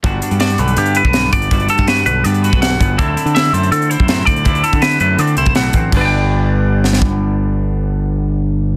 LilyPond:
<<
  \new Staff \with { instrumentName = "Clean electric guitar" } { \time 4/4 \key g \major \tempo 4 = 163 r4 d''8 b'8 g'8 b'4 d''8~ | d''8 a'8 b'8 b'8 d''8 b'8 fis''4 | a'4 e''8 c''8 a'8 c''4 d''8~ | d''8 a'8 b'8 b'8 d''8 c''8 fis''4 |
<b' d'' g''>1~ | <b' d'' g''>1 | }
  \new Staff \with { instrumentName = "Clean electric guitar" } { \time 4/4 \key g \major << { <b d' fis'>8 d'8 fis'4 b8 e'16 fis'8. b8 | <b d' fis'>8 b16 d'16 fis'4 b8 fis'4 b8 | <c' e'>8 e'8 e'4 c'8 e'4 c'8 | <c' e'>8 e'8 e'4 c'8 e'4 c'8 |
<d b d'>1~ | <d b d'>1 | } \\ { g,4. d4. g,4 | g,4. d4. g,4 | d4. a4. a,4 | d4. a4. a,4 |
g,1~ | g,1 | } >> }
  \new Staff \with { instrumentName = "Picked electric bass" } { \clef bass \time 4/4 \key g \major g,,8 r16 g,8. b,,8 g,8. b,,8. g,,8 | g,,8 r16 g,8. b,,8 g,8. b,,8. g,,8 | d,8 r16 d8. fis,8 d8. fis,8. d,8 | d,8 r16 d8. fis,8 d8 c,8 b,,8 a,,8 |
g,,1~ | g,,1 | }
  \new DrumStaff \with { instrumentName = "Drums" } \drummode { \time 4/4 <hh bd>8 hh16 hh16 <hh sn>16 hh16 hh16 hh16 hh16 hh16 hh16 bd16 <hh sn>8 <hh bd>16 hh16 | <hh bd>16 hh16 hh16 <hh bd>16 <hh sn>16 hh16 hh8 hh16 hh16 hh16 <hh bd>16 <hh sn>8 <hh bd>8 | <hh bd>8 hh16 hh16 <hh sn>16 hh16 hh16 hh16 hh16 hh16 hh16 bd16 <hh sn>8 <hh bd>16 hh16 | <hh bd>16 hh16 hh16 <hh bd>16 <hh sn>16 hh16 hh8 hh16 hh16 hh16 <hh bd>16 <hh sn>8 <hh bd>8 |
<cymc bd>4 r4 r8 sn16 sn16 bd4 | r4 r4 r4 r4 | }
>>